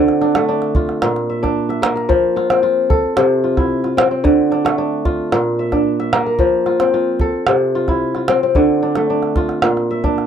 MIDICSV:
0, 0, Header, 1, 3, 480
1, 0, Start_track
1, 0, Key_signature, -1, "major"
1, 0, Tempo, 538117
1, 1866, Time_signature, 4, 2, 24, 8
1, 9157, End_track
2, 0, Start_track
2, 0, Title_t, "Kora"
2, 0, Program_c, 0, 46
2, 0, Note_on_c, 0, 50, 91
2, 0, Note_on_c, 0, 60, 63
2, 0, Note_on_c, 0, 65, 58
2, 192, Note_on_c, 0, 62, 73
2, 316, Note_on_c, 0, 57, 75
2, 429, Note_off_c, 0, 62, 0
2, 433, Note_on_c, 0, 62, 73
2, 671, Note_off_c, 0, 65, 0
2, 675, Note_on_c, 0, 65, 72
2, 912, Note_on_c, 0, 46, 81
2, 953, Note_off_c, 0, 50, 0
2, 966, Note_off_c, 0, 57, 0
2, 1155, Note_on_c, 0, 76, 59
2, 1209, Note_off_c, 0, 65, 0
2, 1270, Note_off_c, 0, 62, 0
2, 1273, Note_on_c, 0, 62, 78
2, 1439, Note_off_c, 0, 60, 0
2, 1506, Note_off_c, 0, 76, 0
2, 1509, Note_on_c, 0, 76, 62
2, 1625, Note_on_c, 0, 58, 77
2, 1745, Note_on_c, 0, 70, 54
2, 1863, Note_on_c, 0, 53, 91
2, 1911, Note_off_c, 0, 46, 0
2, 1917, Note_off_c, 0, 76, 0
2, 2108, Note_on_c, 0, 65, 65
2, 2230, Note_on_c, 0, 60, 73
2, 2341, Note_off_c, 0, 65, 0
2, 2344, Note_on_c, 0, 65, 70
2, 2586, Note_on_c, 0, 69, 76
2, 2639, Note_off_c, 0, 58, 0
2, 2639, Note_off_c, 0, 70, 0
2, 2771, Note_off_c, 0, 62, 0
2, 2828, Note_on_c, 0, 48, 85
2, 2869, Note_off_c, 0, 53, 0
2, 3063, Note_off_c, 0, 65, 0
2, 3067, Note_on_c, 0, 65, 60
2, 3188, Note_on_c, 0, 64, 70
2, 3420, Note_off_c, 0, 65, 0
2, 3423, Note_on_c, 0, 65, 58
2, 3477, Note_off_c, 0, 64, 0
2, 3539, Note_off_c, 0, 60, 0
2, 3543, Note_on_c, 0, 60, 85
2, 3663, Note_off_c, 0, 60, 0
2, 3666, Note_on_c, 0, 60, 62
2, 3761, Note_off_c, 0, 69, 0
2, 3781, Note_on_c, 0, 50, 89
2, 3828, Note_off_c, 0, 48, 0
2, 4027, Note_on_c, 0, 62, 68
2, 4145, Note_on_c, 0, 57, 79
2, 4261, Note_off_c, 0, 62, 0
2, 4265, Note_on_c, 0, 62, 70
2, 4503, Note_off_c, 0, 65, 0
2, 4507, Note_on_c, 0, 65, 80
2, 4749, Note_on_c, 0, 46, 82
2, 4787, Note_off_c, 0, 50, 0
2, 4802, Note_off_c, 0, 57, 0
2, 4988, Note_on_c, 0, 76, 61
2, 5041, Note_off_c, 0, 65, 0
2, 5101, Note_off_c, 0, 62, 0
2, 5105, Note_on_c, 0, 62, 77
2, 5272, Note_off_c, 0, 60, 0
2, 5345, Note_off_c, 0, 76, 0
2, 5348, Note_on_c, 0, 76, 67
2, 5466, Note_on_c, 0, 58, 80
2, 5588, Note_on_c, 0, 70, 62
2, 5703, Note_on_c, 0, 53, 88
2, 5747, Note_off_c, 0, 46, 0
2, 5756, Note_off_c, 0, 76, 0
2, 5944, Note_on_c, 0, 65, 70
2, 6067, Note_on_c, 0, 60, 76
2, 6184, Note_off_c, 0, 65, 0
2, 6187, Note_on_c, 0, 65, 72
2, 6430, Note_on_c, 0, 69, 84
2, 6484, Note_off_c, 0, 58, 0
2, 6484, Note_off_c, 0, 70, 0
2, 6603, Note_off_c, 0, 62, 0
2, 6672, Note_on_c, 0, 48, 75
2, 6709, Note_off_c, 0, 53, 0
2, 6911, Note_off_c, 0, 65, 0
2, 6914, Note_on_c, 0, 65, 64
2, 7035, Note_on_c, 0, 64, 83
2, 7270, Note_off_c, 0, 65, 0
2, 7274, Note_on_c, 0, 65, 64
2, 7327, Note_off_c, 0, 64, 0
2, 7389, Note_off_c, 0, 60, 0
2, 7393, Note_on_c, 0, 60, 86
2, 7517, Note_off_c, 0, 60, 0
2, 7520, Note_on_c, 0, 60, 68
2, 7606, Note_off_c, 0, 69, 0
2, 7632, Note_on_c, 0, 50, 89
2, 7671, Note_off_c, 0, 48, 0
2, 7873, Note_on_c, 0, 62, 67
2, 7996, Note_on_c, 0, 57, 68
2, 8113, Note_off_c, 0, 62, 0
2, 8116, Note_on_c, 0, 62, 67
2, 8352, Note_off_c, 0, 65, 0
2, 8355, Note_on_c, 0, 65, 77
2, 8592, Note_on_c, 0, 46, 78
2, 8634, Note_off_c, 0, 50, 0
2, 8645, Note_off_c, 0, 57, 0
2, 8836, Note_on_c, 0, 76, 65
2, 8890, Note_off_c, 0, 65, 0
2, 8952, Note_off_c, 0, 62, 0
2, 8955, Note_on_c, 0, 62, 82
2, 9126, Note_off_c, 0, 60, 0
2, 9157, Note_off_c, 0, 46, 0
2, 9157, Note_off_c, 0, 62, 0
2, 9157, Note_off_c, 0, 76, 0
2, 9157, End_track
3, 0, Start_track
3, 0, Title_t, "Calabash"
3, 75, Note_on_c, 9, 38, 20
3, 164, Note_off_c, 9, 38, 0
3, 192, Note_on_c, 9, 38, 19
3, 281, Note_off_c, 9, 38, 0
3, 313, Note_on_c, 9, 38, 51
3, 402, Note_off_c, 9, 38, 0
3, 552, Note_on_c, 9, 38, 20
3, 641, Note_off_c, 9, 38, 0
3, 667, Note_on_c, 9, 36, 59
3, 756, Note_off_c, 9, 36, 0
3, 794, Note_on_c, 9, 38, 18
3, 883, Note_off_c, 9, 38, 0
3, 910, Note_on_c, 9, 38, 59
3, 999, Note_off_c, 9, 38, 0
3, 1038, Note_on_c, 9, 38, 20
3, 1127, Note_off_c, 9, 38, 0
3, 1283, Note_on_c, 9, 36, 49
3, 1283, Note_on_c, 9, 38, 21
3, 1372, Note_off_c, 9, 36, 0
3, 1372, Note_off_c, 9, 38, 0
3, 1520, Note_on_c, 9, 38, 17
3, 1609, Note_off_c, 9, 38, 0
3, 1635, Note_on_c, 9, 38, 75
3, 1724, Note_off_c, 9, 38, 0
3, 1759, Note_on_c, 9, 38, 21
3, 1848, Note_off_c, 9, 38, 0
3, 1870, Note_on_c, 9, 36, 71
3, 1959, Note_off_c, 9, 36, 0
3, 2117, Note_on_c, 9, 38, 24
3, 2206, Note_off_c, 9, 38, 0
3, 2232, Note_on_c, 9, 38, 52
3, 2321, Note_off_c, 9, 38, 0
3, 2589, Note_on_c, 9, 36, 66
3, 2678, Note_off_c, 9, 36, 0
3, 2826, Note_on_c, 9, 38, 64
3, 2915, Note_off_c, 9, 38, 0
3, 3187, Note_on_c, 9, 36, 54
3, 3187, Note_on_c, 9, 38, 21
3, 3277, Note_off_c, 9, 36, 0
3, 3277, Note_off_c, 9, 38, 0
3, 3428, Note_on_c, 9, 38, 20
3, 3518, Note_off_c, 9, 38, 0
3, 3554, Note_on_c, 9, 38, 67
3, 3643, Note_off_c, 9, 38, 0
3, 3789, Note_on_c, 9, 36, 73
3, 3878, Note_off_c, 9, 36, 0
3, 4033, Note_on_c, 9, 38, 21
3, 4122, Note_off_c, 9, 38, 0
3, 4156, Note_on_c, 9, 38, 57
3, 4245, Note_off_c, 9, 38, 0
3, 4507, Note_on_c, 9, 36, 65
3, 4596, Note_off_c, 9, 36, 0
3, 4748, Note_on_c, 9, 38, 61
3, 4837, Note_off_c, 9, 38, 0
3, 5103, Note_on_c, 9, 36, 50
3, 5103, Note_on_c, 9, 38, 20
3, 5193, Note_off_c, 9, 36, 0
3, 5193, Note_off_c, 9, 38, 0
3, 5350, Note_on_c, 9, 38, 18
3, 5439, Note_off_c, 9, 38, 0
3, 5466, Note_on_c, 9, 38, 65
3, 5555, Note_off_c, 9, 38, 0
3, 5697, Note_on_c, 9, 36, 69
3, 5786, Note_off_c, 9, 36, 0
3, 5942, Note_on_c, 9, 38, 19
3, 6031, Note_off_c, 9, 38, 0
3, 6064, Note_on_c, 9, 38, 50
3, 6153, Note_off_c, 9, 38, 0
3, 6418, Note_on_c, 9, 36, 66
3, 6507, Note_off_c, 9, 36, 0
3, 6659, Note_on_c, 9, 38, 67
3, 6749, Note_off_c, 9, 38, 0
3, 7028, Note_on_c, 9, 36, 45
3, 7028, Note_on_c, 9, 38, 18
3, 7117, Note_off_c, 9, 36, 0
3, 7117, Note_off_c, 9, 38, 0
3, 7267, Note_on_c, 9, 38, 17
3, 7356, Note_off_c, 9, 38, 0
3, 7386, Note_on_c, 9, 38, 64
3, 7476, Note_off_c, 9, 38, 0
3, 7627, Note_on_c, 9, 36, 56
3, 7627, Note_on_c, 9, 38, 18
3, 7716, Note_off_c, 9, 36, 0
3, 7716, Note_off_c, 9, 38, 0
3, 7988, Note_on_c, 9, 38, 46
3, 8077, Note_off_c, 9, 38, 0
3, 8230, Note_on_c, 9, 38, 19
3, 8319, Note_off_c, 9, 38, 0
3, 8347, Note_on_c, 9, 36, 66
3, 8347, Note_on_c, 9, 38, 19
3, 8436, Note_off_c, 9, 36, 0
3, 8436, Note_off_c, 9, 38, 0
3, 8466, Note_on_c, 9, 38, 20
3, 8556, Note_off_c, 9, 38, 0
3, 8583, Note_on_c, 9, 38, 65
3, 8672, Note_off_c, 9, 38, 0
3, 8716, Note_on_c, 9, 38, 18
3, 8805, Note_off_c, 9, 38, 0
3, 8954, Note_on_c, 9, 36, 50
3, 8954, Note_on_c, 9, 38, 19
3, 9043, Note_off_c, 9, 36, 0
3, 9043, Note_off_c, 9, 38, 0
3, 9082, Note_on_c, 9, 38, 20
3, 9157, Note_off_c, 9, 38, 0
3, 9157, End_track
0, 0, End_of_file